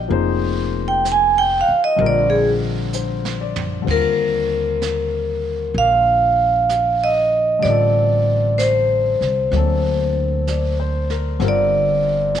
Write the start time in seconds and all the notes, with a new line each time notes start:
Already playing: A#4 C5
0.08 F1 F3 A#3 D#4 G#4, brush sweep
0.12 C5
0.88 G5
1.05 brush sweep, snare, hi-hat pedal
1.12 G#5
1.38 G5
1.61 F5
1.69 muted upright bass stroke
1.84 D#5
1.96 A#1 D3 G3 C4 F4, brush sweep
2.01 A#4
2.06 D5
2.30 G#4
2.93 C5, hi-hat pedal
3.25 snare
3.41 D5
3.56 floor tom
3.82 D3 G3
3.86 D#2 C4 F4, brush sweep, kick, snare, ride
3.91 A#4
4.82 brush sweep, snare, hi-hat pedal
5.74 A#1 F5, brush sweep
6.69 brush sweep, snare, hi-hat pedal
7.04 D#5
7.59 D3 G3 D5
7.63 A1 C4 F4, brush sweep, snare
7.70 A4
8.58 C5, brush sweep, snare, hi-hat pedal
9.21 C2, snare
9.51 D2 F#3 A#3 C4, brush sweep, snare
9.56 D4 A4
10.47 D5, brush sweep, snare, hi-hat pedal
10.80 C5
11.10 A#4, snare
11.39 G1 D3 G3 C4 F4, brush sweep, snare
11.44 A#4
11.48 D5
12.35 brush sweep, snare, hi-hat pedal